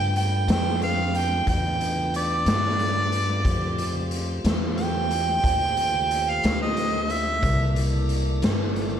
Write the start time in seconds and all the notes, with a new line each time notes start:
Already playing: G2 A3 D4 F4 B4 G5
0.16 G5, closed hi-hat
0.48 F2, snare, closed hi-hat
0.52 G5
0.82 F5, closed hi-hat
1.14 G5, closed hi-hat
1.47 E2 G5, kick, closed hi-hat
1.81 closed hi-hat
2.14 D5, closed hi-hat
2.46 G2, snare, closed hi-hat
2.79 closed hi-hat
3.12 closed hi-hat
3.44 F2 A3 F4 G4 C5, kick, closed hi-hat
3.78 closed hi-hat
4.11 closed hi-hat
4.44 E2, snare, closed hi-hat
4.78 G5, closed hi-hat
5.11 closed hi-hat
5.44 D#2, kick, closed hi-hat
5.77 closed hi-hat
6.11 closed hi-hat
6.30 F5
6.44 D2, snare, closed hi-hat
6.62 D#5
6.77 closed hi-hat
7.10 E5, closed hi-hat
7.41 C2 A#3 E4 A4 D5, kick, closed hi-hat
7.76 closed hi-hat
8.09 closed hi-hat
8.42 G1, snare, closed hi-hat
8.76 closed hi-hat